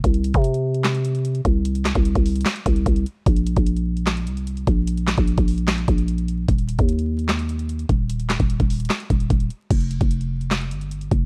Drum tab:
CC |--------------------------------|--------------------------------|--------------------------------|--------------------------------|
HH |x-x-x-x-x-x---x-x-x-x-x-x-x-x---|x-x-x-x-x-x-o-xx-xx-x-x-x-x-x---|x-x-x-x-x-x---x-x-x-x-x-x-x-x---|x-x-x-x-x-x-o-x-x-x-x-x-x-x-x---|
CP |----------------x---------------|----x-----------x---------------|----------------x---------------|----x-----------x---------------|
SD |----------------o---------------|----o-----------o---------------|----------------o---------------|----o-----------o---------------|
BD |o-----o---------------------o---|------o---o---------o---o-------|o-----o---------------------o---|------o---o---------o-----------|

CC |--------------------------------|--------------------------------|x-------------------------------|
HH |x-x-x-x-x-x---x-x-x-x-x-x-x-x---|x-x-x-x-x-x-o-xxxxx-x-x-x-x-x---|x-x-x-x-x-x---x-x-x-x-x-x-x-x---|
CP |----------------x---------------|----x-----------x---------------|----------------x---------------|
SD |----------------o---------------|----o-----------o---------------|----------------o---------------|
BD |o-----o---------------------o---|------o---o---------o---o-------|o-----o---------------------o---|